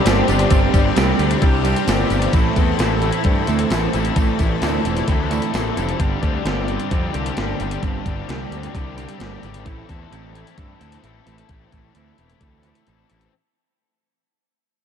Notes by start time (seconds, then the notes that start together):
Already playing: G4 C5 D5 C6
0.05 G1 G3 C4 D4 G4, snare, closed hi-hat, tambourine
0.28 G1 C4 D4 G4, closed hi-hat, tambourine
0.39 closed hi-hat
0.51 G1 G3 C4 D4 G4, kick, closed hi-hat, tambourine
0.73 G1 C4 D4 G4, kick, closed hi-hat, tambourine
0.96 C2 G3 C4 D4 G4, snare, closed hi-hat, tambourine
1.19 D2 C4 D4 G4, closed hi-hat
1.31 closed hi-hat
1.42 C2 G3 C4 D4 G4, kick, closed hi-hat
1.64 G3 C4 D4 G4, closed hi-hat, tambourine
1.76 closed hi-hat
1.88 G1 G3 C4 D4 G4, snare, closed hi-hat, tambourine
2.10 G1 C4 D4 G4, closed hi-hat, tambourine
2.22 closed hi-hat
2.33 A1 A2 E3 A3 C4 E4 A4 E5, kick, closed hi-hat, tambourine
2.56 E2 A3 C4 E4 A4, kick, closed hi-hat, tambourine
2.79 A1 A2 E3 A3 C4 E4 A4, snare, closed hi-hat, tambourine
3.02 A3 C4 E4, closed hi-hat
3.13 closed hi-hat
3.24 G2 A2 E3 A3 C4 A4, kick, closed hi-hat
3.28 E4
3.47 D2 A2 E3 A3 C4 E4 A4, closed hi-hat, tambourine
3.59 closed hi-hat
3.70 A1 E3 A3 C4 E4 A4, snare, closed hi-hat, tambourine
3.93 A1 A3 C4 E4 A4, closed hi-hat, tambourine
4.05 closed hi-hat
4.16 A1 A2 E3 A3 C4 E4 A4 D5, kick, closed hi-hat, tambourine
4.39 A1 A3 C4 E4 A4, kick, closed hi-hat, tambourine
4.62 D2 A2 E3 A3 C4 E4 A4, snare, closed hi-hat, tambourine
4.85 E1 A3 C4 E4, closed hi-hat, tambourine
4.97 snare, closed hi-hat
5.08 D2 A2 E3 A3 C4 E4 A4, kick, closed hi-hat, tambourine
5.31 A2 E3 A3 C4 E4 A4, closed hi-hat, tambourine
5.42 closed hi-hat
5.54 A1 E3 A3 C4 E4 A4, snare, closed hi-hat, tambourine
5.76 F1 A3 C4 E4 A4, closed hi-hat, tambourine
5.89 closed hi-hat
5.99 G1 G2 D3 G3 C4 D4 G4, kick, closed hi-hat
6.22 D2 G3 C4 D4 G4, kick, closed hi-hat
6.45 G1 G2 D3 G3 C4 D4 G4, snare, closed hi-hat
6.67 G3 C4 D4, closed hi-hat
6.80 closed hi-hat
6.90 F2 G2 D3 G3 C4 D4 G4, kick, closed hi-hat
7.13 C2 G2 D3 G3 C4 D4 G4, closed hi-hat
7.26 closed hi-hat
7.37 G1 D3 G3 C4 D4 G4, snare, closed hi-hat
7.60 G1 G3 C4 D4 G4, closed hi-hat
7.71 closed hi-hat
7.82 G1 G2 D3 G3 C4 D4 G4, kick, closed hi-hat
8.05 G1 G3 C4 D4 G4, kick, closed hi-hat
8.28 C2 G2 D3 G3 C4 D4 G4, snare, closed hi-hat
8.51 D2 G3 C4 D4, closed hi-hat
8.63 snare, closed hi-hat
8.73 C2 G2 D3 G3 C4 D4, kick, closed hi-hat
8.77 G4
8.96 G2 D3 G3 C4 D4 G4, closed hi-hat
9.09 closed hi-hat
9.19 G1 D3 G3 C4 D4, snare, closed hi-hat
9.23 G4
9.41 G#1 G3 C4 D4 G4, closed hi-hat
9.54 closed hi-hat
9.64 A1 A2 E3 A3 C4 E4 A4, kick, closed hi-hat
9.88 E2 A3 C4 E4 A4, kick, closed hi-hat
10.10 A1 A2 E3 A3 C4 E4, closed hi-hat
10.14 A4
10.33 A3 C4 E4, closed hi-hat
10.47 closed hi-hat
10.56 G2 A2 E3 A3 C4 E4 A4, kick, closed hi-hat
10.80 D2 A2 E3 A3 C4 E4 A4, closed hi-hat
10.92 closed hi-hat
11.03 A1 E3 A3 C4 E4 A4, closed hi-hat
11.26 A1 A3 C4 E4 A4, closed hi-hat
11.38 closed hi-hat
11.49 A1 A2 E3 A3 C4 E4 A4, kick, closed hi-hat
11.72 A1 A3 C4 E4 A4, kick, closed hi-hat
11.94 D2 A2 E3 A3 C4 E4 A4, closed hi-hat
12.17 E1 A3 C4 E4, closed hi-hat
12.30 closed hi-hat
12.41 D2 A2 E3 A3 C4 E4 A4, kick, closed hi-hat
12.63 A2 E3 A3 C4 E4 A4, closed hi-hat
12.75 closed hi-hat
12.86 A1 E3 A3 C4 E4 A4, closed hi-hat
13.09 A1 A3 C4 E4 A4, closed hi-hat
13.21 closed hi-hat